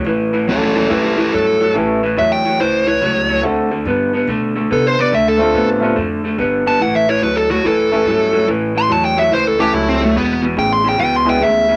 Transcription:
0.04 A1 A2 E3
0.33 A2 E3
0.47 D2 A2 F#3 C#4 A4
0.64 C#4 A4
0.75 A2 F#3 C#4 A4
0.89 F#2 A2 E3 A3 C#4 E4 G4 A4
1.04 E4 G4
1.17 A2 E3 E4 G4
1.33 G2 A2 F#3 A4
1.60 A2 F#3
1.74 A1 A2 E3 A3 C#4 E4 G4 A4
2.03 A2 E3
2.17 E2 A2 F#3 E5
2.32 G5
2.45 A2 F#3
2.60 C#2 A2 E3 C5
2.86 A2 E3 C#5
3.01 C#2 A2 F#3
3.29 A2 F#3
3.42 D2 D3 A3 C4 D4 F#4 A4
3.71 D3 A3
3.85 G2 D3 B3
4.13 D3 B3
4.27 B2 D3 A3
4.56 D3 A3
4.71 C3 D3 B3 A4
4.87 C5
4.98 D3 B3 D5
5.12 D2 D3 A3 E5
5.28 A4
5.37 D3 A3 C4 D4 F4 A4
5.54 A2 D3 B3
5.80 D3 A3 B3 C4 D4 F4 A4
5.96 F2 D3 A3
6.24 D3 A3
6.38 G1 D3 B3
6.66 D3 B3 A5
6.80 A1 A2 E3 F#5
6.96 E5
7.08 A2 E3 C#5
7.22 D2 A2 F#3 B4
7.36 A4
7.50 A2 F#3 F#4
7.64 F#2 A2 E3 A4
7.91 A2 E3 A3 C#4 E4 G4 A4
8.05 G2 A2 F#3
8.33 A2 F#3
8.47 A1 A2 E3
8.75 A2 E3 C6
8.89 E2 A2 F#3 A5
9.05 G5
9.17 A2 F#3 E5
9.31 C#2 A2 E3 C5
9.47 A4
9.58 A2 E3 A3 C#4 E4 G4 A4
9.73 C#2 A2 F#3 E4
9.89 C4
10.00 A2 F#3
10.05 A3
10.15 E1 E2 B2 B3
10.42 E2 B2
10.57 A1 E2 C#3 G5
10.73 C6
10.84 E2 C#3
10.89 G5
10.98 C#2 E2 B2 G5
11.16 C6
11.24 E2 B2 G#3 B3 D4 E4 G#4
11.29 G5
11.40 D2 E2 C#3 E5
11.68 E2 C#3

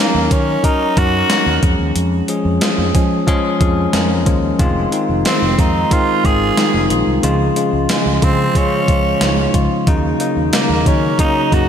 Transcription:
Already playing: F#3
0.00 A#3 C#4 D#4 A#4
0.15 D#2
0.30 D#3 F#3 C#4 D#4 A#4, kick, closed hi-hat
0.63 F#3 C#4 D#4 A#4, kick, closed hi-hat
0.96 F#2 F#3 C#4 D#4 F#4 A#4, kick, closed hi-hat
1.29 F#3 C#4 D#4 A#4, snare, closed hi-hat
1.46 D#2
1.62 F2 F3 G#3 C#4 G#4, kick, closed hi-hat
1.79 D#2
1.96 F2, closed hi-hat
2.28 F3 G#3 C#4 G#4, closed hi-hat
2.45 F2
2.61 F3 G#3 C#4 G#4, snare, closed hi-hat
2.78 F2
2.94 F3 G#3 C#4 G#4, kick, closed hi-hat
3.27 F3 G#3 C#4 G#4, kick, closed hi-hat
3.60 F2 F3 G#3 C#4 G#4, kick, closed hi-hat
3.93 F2 F3 G#3 C#4 A#4, snare, closed hi-hat
4.26 D#2 F3 G#3 C#4 F4, kick, closed hi-hat
4.59 F1 D#3 G#3 C4 F4, kick, closed hi-hat
4.92 D#3 G#3 C4 D#4, closed hi-hat
5.09 F1
5.25 D#3 G#3 C4 F4, snare, closed hi-hat
5.42 F1
5.58 F2 D#3 G#3 C4 D#4 F4, kick, closed hi-hat
5.91 D#3 G#3 C4 F4, kick, closed hi-hat
6.24 G#1 D#3 G#3 C4 F4 G#4, kick, closed hi-hat
6.57 D#3 G#3 C4 D#4, snare, closed hi-hat
6.74 F1
6.90 A#1 D#3 G#3 C4 F4, closed hi-hat
7.07 C2
7.23 C#2 C#3 F3 G#3 F4, closed hi-hat
7.56 C#3 F3 G#3 F4, closed hi-hat
7.73 C#2
7.89 C#3 F3 G#3 F4, snare, closed hi-hat
8.06 C#2
8.22 C#3 F3 G#3 C4 F4, kick, closed hi-hat
8.55 C#3 F3 G#3 C#4 F4, kick, closed hi-hat
8.88 C#2 C#3 F3 G#3 F4, kick, closed hi-hat
9.21 C#2 C#3 F3 G#3 D#4, snare, closed hi-hat
9.54 C#2 C#3 F3 G#3 F4, kick, closed hi-hat
9.87 D#2 C#3 F#3 A#3 D#4, kick, closed hi-hat
10.20 C#3 F#3 A#3 D#4, closed hi-hat
10.37 D#2
10.52 C#3 F#3 A#3 D#4, snare, closed hi-hat
10.70 D#2
10.86 C#3 D#3 F#3 A#3 C#4 D#4, kick, closed hi-hat
11.19 C#3 F#3 A#3 D#4, kick, closed hi-hat
11.51 F#2 C#3 F#3 A#3 D#4 F#4, kick, closed hi-hat

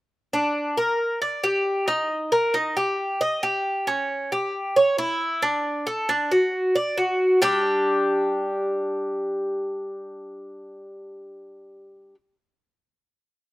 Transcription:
0.33 D4
0.77 A#4
1.22 D5
1.44 G4
1.88 D#4
2.32 A#4
2.54 D#4
2.77 G4
3.21 D#5
3.43 G4
3.87 C#4
4.32 G4
4.76 C#5
4.98 E4
5.42 D4
5.87 A4
6.09 D4
6.31 F#4
6.75 D5
6.98 F#4
7.42 G3 D4 G4

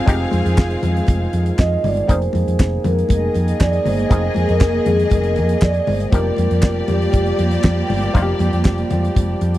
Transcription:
Already playing: D#3 G#3 C4 F4 G#4 F5
0.06 F1 F3 G#3 C4 D#4 G4, kick, closed hi-hat
0.31 F2, closed hi-hat, muted conga, high conga
0.46 F2, closed hi-hat
0.58 F1, kick, snare, clap, muted conga
0.70 closed hi-hat
0.83 F2, closed hi-hat, high conga, low conga
0.96 closed hi-hat
1.07 F1, kick, closed hi-hat, muted conga, high conga
1.33 F2, closed hi-hat
1.46 closed hi-hat
1.58 F2 D#5, kick, snare, clap, muted conga
1.84 G1 D5, open hi-hat, muted conga, high conga, low conga
1.97 closed hi-hat
2.08 F1 F3 A#3 C4 D#4 G#4 C5, kick, closed hi-hat, muted conga
2.22 closed hi-hat
2.33 F2, closed hi-hat, muted conga, high conga
2.47 F2, closed hi-hat
2.59 F1, kick, snare, clap, muted conga
2.84 F2 A#4, closed hi-hat, muted conga, high conga, low conga
2.99 closed hi-hat
3.09 F1 A#3 G#4 D#5, kick, closed hi-hat, muted conga, high conga
3.34 F2, closed hi-hat, muted conga
3.48 closed hi-hat
3.60 F2 D5, kick, snare, clap
3.73 closed hi-hat
3.86 G1 C5, open hi-hat, high conga, low conga
3.99 closed hi-hat
4.09 F1 F3 A#3 C4 D#4 G#4, kick, closed hi-hat, muted conga
4.34 F2, closed hi-hat, high conga
4.49 F2 A#4, closed hi-hat
4.60 F1, kick, snare, clap, muted conga
4.86 F2 G#4, closed hi-hat, high conga, low conga
5.00 closed hi-hat
5.10 F1 A#4, kick, closed hi-hat, muted conga, high conga
5.23 closed hi-hat
5.36 F2, closed hi-hat, muted conga
5.49 closed hi-hat
5.61 F2 D5, kick, snare, clap, muted conga
5.74 closed hi-hat
5.87 G1 C5, open hi-hat, muted conga, high conga, low conga
6.00 closed hi-hat
6.12 F1 F3 G3 A#3 D4 D#4 F4 G4 A#4 D5, kick, closed hi-hat, muted conga
6.37 F2, closed hi-hat, muted conga, high conga
6.51 F2, closed hi-hat
6.62 F1, kick, snare, clap, muted conga
6.88 F2 G4, closed hi-hat, muted conga, high conga, low conga
7.02 closed hi-hat
7.12 F1, kick, closed hi-hat, muted conga, high conga
7.26 closed hi-hat
7.39 F2, closed hi-hat, muted conga
7.51 snare, closed hi-hat
7.63 F2, kick, snare, clap, muted conga
7.89 G1, open hi-hat, high conga, low conga
8.02 closed hi-hat
8.13 F1 F3 A#3 D4 D#4 F4, kick, closed hi-hat, muted conga
8.23 G4
8.39 F2, closed hi-hat, muted conga, high conga
8.53 F2, closed hi-hat
8.65 F1, kick, snare, clap
8.78 closed hi-hat
8.90 F2, closed hi-hat, muted conga, high conga, low conga
9.04 closed hi-hat
9.15 F1, kick, closed hi-hat, high conga
9.41 F2, closed hi-hat, muted conga
9.54 closed hi-hat

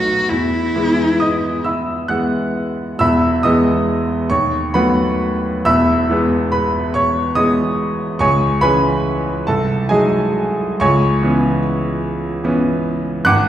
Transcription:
Already playing: B1 F#3 A3 B3 F#4
0.29 E2 E4
0.76 E3 G#3 B3
1.20 D#5 D#6
1.64 E5 B5 E6
2.08 E3 G#3 B3 F#5 F#6
2.99 E1 E2 E5 B5 E6
3.43 E3 G#3 B3 D#5 D#6
4.30 D#2 C#5 C#6
4.74 F#3 A3 B3 B4 F#5 B5
5.65 E1 E2 E5 B5 E6
6.09 E3 G#3 B3
6.52 B4 B5
6.94 C#5 C#6
7.35 E3 G#3 B3 D#5 D#6
8.19 C#2 C#5 G#5 C#6
8.61 E3 G#3 C#4 B4 G#5 B5
9.47 C2 A4 A5
9.89 F#3 G#3 D#4 G#4 D#5 G#5
10.80 C#2 C#5 G#5 C#6
11.22 E3 B3 C#4
12.44 E3 B3 C#4
13.25 G#1 F#5 D6 F#6

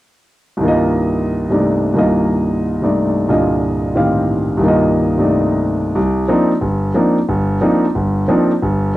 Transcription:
0.57 C2 G2
0.61 D#3 A#3
0.65 F4 D#5
1.50 G2 C3 A3 D#4 D5
1.94 C2 G2 D#3 A#3 F4
1.99 D#5
2.82 G2 C3 A3 D#4 D5
3.28 C2 G2 A#2 D3 F4 D#5
3.95 A2 D#3 C4 G4 F5
4.57 C2 G2
4.61 D#3 A#3
4.66 F4 D#5
5.17 G2 C3 A3 D#4 D5
5.95 C2
6.28 F3 A#3 C4 D4 D#4
6.61 G1
6.94 F3 A#3 C4 D4 D#4
7.29 G1
7.61 F3 A#3 C4 D4 D#4
7.95 G1
8.28 F3 A#3 C4 D4 D#4
8.62 G1

